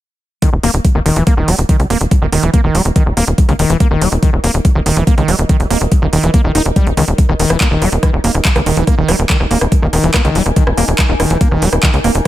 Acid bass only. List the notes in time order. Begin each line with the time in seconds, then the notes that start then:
0.42 D#3
0.63 A#3
0.95 D#3
1.06 D#3
1.16 E3
1.27 A#3
1.37 D#3
1.48 G3
1.69 D#3
1.90 A#3
2.22 D#3
2.32 D#3
2.43 E3
2.54 A#3
2.64 D#3
2.75 G3
2.96 D#3
3.17 A#3
3.49 D#3
3.59 D#3
3.70 E3
3.80 A#3
3.91 D#3
4.01 G3
4.23 D#3
4.44 A#3
4.75 D#3
4.86 D#3
4.97 E3
5.07 A#3
5.18 D#3
5.28 G3
5.49 D#3
5.70 A#3
6.02 D#3
6.13 D#3
6.23 E3
6.34 A#3
6.44 D#3
6.55 D#4
6.76 G3
6.97 D#3
7.29 D#3
7.39 D#3
7.50 E3
7.61 A#3
7.71 D#3
7.82 G3
8.03 D#3
8.24 A#3
8.56 D#3
8.66 D#3
8.77 E3
8.87 A#3
8.98 D#3
9.08 G3
9.30 D#3
9.51 A#3
9.82 D#3
9.93 D#3
10.04 E3
10.14 A#3
10.25 D#3
10.35 G3
10.56 D#3
10.78 A#3
11.09 D#3
11.20 D#3
11.30 E3
11.41 A#3
11.51 D#3
11.62 G3
11.83 D#3
12.04 A#3